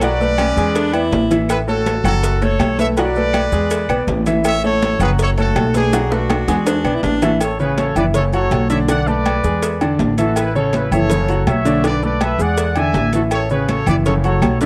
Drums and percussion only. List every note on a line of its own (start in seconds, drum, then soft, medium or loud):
0.01 cowbell loud
0.01 low agogo medium
0.01 maracas medium
0.20 high conga soft
0.20 maracas soft
0.38 cowbell medium
0.38 high conga loud
0.38 low timbale medium
0.38 low agogo loud
0.38 claves medium
0.38 maracas soft
0.57 maracas medium
0.75 cowbell loud
0.75 high conga soft
0.75 low agogo medium
0.75 maracas medium
0.93 high conga soft
0.93 low agogo loud
0.93 claves medium
0.93 maracas soft
1.12 cowbell medium
1.12 high conga medium
1.12 low timbale medium
1.12 maracas soft
1.31 cowbell medium
1.31 high conga medium
1.31 low agogo medium
1.31 maracas medium
1.49 cowbell loud
1.49 high conga soft
1.49 low agogo loud
1.49 claves medium
1.49 maracas medium
1.68 high conga soft
1.68 maracas soft
1.86 cowbell medium
1.86 high conga loud
1.86 low timbale medium
1.86 low agogo medium
1.86 maracas soft
2.05 low conga medium
2.05 low agogo loud
2.05 claves medium
2.05 maracas medium
2.23 cowbell loud
2.23 high conga soft
2.23 maracas loud
2.42 high conga soft
2.42 low agogo medium
2.42 maracas soft
2.59 cowbell medium
2.59 high conga medium
2.59 low timbale medium
2.59 low agogo loud
2.59 claves medium
2.59 maracas soft
2.79 cowbell medium
2.79 high conga medium
2.79 maracas medium
2.97 cowbell loud
2.97 high conga soft
2.97 low agogo medium
2.97 maracas medium
3.16 high conga soft
3.16 maracas soft
3.33 cowbell medium
3.33 high conga medium
3.33 low timbale medium
3.33 low agogo loud
3.33 claves medium
3.33 maracas soft
3.52 high conga soft
3.52 maracas medium
3.70 cowbell loud
3.70 high conga soft
3.70 low agogo medium
3.70 maracas medium
3.89 high conga soft
3.89 low agogo loud
3.89 claves medium
3.89 maracas soft
4.07 cowbell medium
4.07 high conga medium
4.07 low timbale medium
4.07 maracas soft
4.26 cowbell medium
4.26 high conga medium
4.26 low agogo medium
4.26 maracas medium
4.44 cowbell loud
4.44 high conga soft
4.44 low agogo loud
4.44 claves medium
4.44 maracas loud
4.63 high conga soft
4.63 maracas soft
4.82 cowbell medium
4.82 high conga loud
4.82 low timbale medium
4.82 low agogo medium
4.82 maracas soft
5.00 low conga medium
5.00 low agogo loud
5.00 claves medium
5.00 maracas medium
5.19 cowbell loud
5.19 high conga soft
5.19 maracas medium
5.38 high conga soft
5.38 low agogo medium
5.38 maracas soft
5.56 cowbell medium
5.56 high conga loud
5.56 low timbale medium
5.56 low agogo loud
5.56 claves medium
5.56 maracas soft
5.74 cowbell medium
5.74 high conga medium
5.74 maracas medium
5.93 cowbell loud
5.93 high bongo loud
5.93 high conga soft
5.93 low agogo medium
5.93 maracas medium
6.11 high bongo medium
6.11 maracas soft
6.30 cowbell medium
6.30 high bongo loud
6.30 high conga loud
6.30 low timbale medium
6.30 low agogo loud
6.30 claves medium
6.30 maracas soft
6.48 low bongo medium
6.48 maracas medium
6.67 cowbell loud
6.67 low bongo medium
6.67 high conga soft
6.67 high timbale loud
6.67 low agogo medium
6.67 maracas loud
6.85 high conga soft
6.85 low agogo loud
6.85 claves medium
6.85 maracas soft
7.03 cowbell medium
7.03 high conga medium
7.03 low timbale medium
7.03 maracas soft
7.22 cowbell medium
7.22 low bongo medium
7.22 high conga medium
7.22 low timbale medium
7.22 low agogo medium
7.22 maracas medium
7.41 cowbell loud
7.41 high conga soft
7.41 low agogo loud
7.41 maracas medium
7.59 high conga soft
7.59 maracas soft
7.78 cowbell medium
7.78 high conga loud
7.78 low timbale medium
7.78 low agogo medium
7.78 maracas soft
7.96 low conga medium
7.96 low agogo loud
7.96 maracas medium
8.14 cowbell loud
8.14 high conga soft
8.14 maracas loud
8.33 high conga soft
8.33 low agogo medium
8.33 maracas soft
8.51 cowbell medium
8.51 high conga medium
8.51 low timbale medium
8.51 low agogo loud
8.51 maracas soft
8.70 cowbell medium
8.70 high conga medium
8.70 maracas medium
8.89 cowbell loud
8.89 high conga soft
8.89 low agogo medium
8.89 maracas medium
9.07 maracas soft
9.26 cowbell medium
9.26 high conga medium
9.26 low timbale medium
9.26 low agogo loud
9.26 maracas soft
9.44 high conga soft
9.44 maracas medium
9.62 cowbell loud
9.62 high conga soft
9.62 low agogo medium
9.62 maracas medium
9.81 high conga soft
9.81 low agogo loud
9.81 maracas soft
9.99 cowbell medium
9.99 high conga loud
9.99 low timbale medium
9.99 maracas soft
10.18 cowbell medium
10.18 high conga medium
10.18 low agogo medium
10.18 maracas medium
10.36 cowbell loud
10.36 low agogo loud
10.36 maracas medium
10.56 high conga soft
10.56 maracas soft
10.73 cowbell medium
10.73 high conga loud
10.73 low timbale medium
10.73 low agogo medium
10.73 maracas soft
10.92 low conga medium
10.92 low agogo loud
10.92 maracas medium
11.10 cowbell loud
11.10 high conga soft
11.10 low conga medium
11.10 maracas medium
11.28 high conga soft
11.28 low agogo medium
11.28 maracas soft
11.47 cowbell medium
11.47 high conga medium
11.47 low timbale medium
11.47 low agogo loud
11.47 maracas soft
11.65 cowbell medium
11.65 high conga medium
11.65 maracas medium
11.84 cowbell loud
11.84 high conga soft
11.84 low agogo medium
11.84 maracas medium
12.03 high conga soft
12.03 maracas soft
12.21 cowbell medium
12.21 high conga loud
12.21 low timbale medium
12.21 low agogo loud
12.21 maracas soft
12.40 high conga soft
12.40 maracas medium
12.57 cowbell loud
12.57 high conga soft
12.57 low agogo medium
12.57 maracas medium
12.76 high conga soft
12.76 low agogo loud
12.76 maracas soft
12.94 cowbell medium
12.94 high conga medium
12.94 low timbale medium
12.94 maracas soft
13.13 cowbell medium
13.13 high conga medium
13.13 low agogo medium
13.13 maracas medium
13.31 cowbell loud
13.31 low agogo loud
13.31 claves medium
13.31 maracas medium
13.50 high conga soft
13.50 maracas soft
13.68 cowbell medium
13.68 high conga medium
13.68 low timbale medium
13.68 low agogo medium
13.68 maracas soft
13.86 low conga medium
13.86 low agogo loud
13.86 claves medium
13.86 maracas medium
14.06 cowbell loud
14.06 high conga soft
14.06 low conga medium
14.06 maracas medium
14.24 high conga soft
14.24 low agogo medium
14.24 maracas soft
14.42 cowbell medium
14.42 high conga medium
14.42 low timbale medium
14.42 low agogo loud
14.42 claves medium
14.42 maracas soft
14.61 cowbell medium
14.61 high conga medium
14.61 maracas medium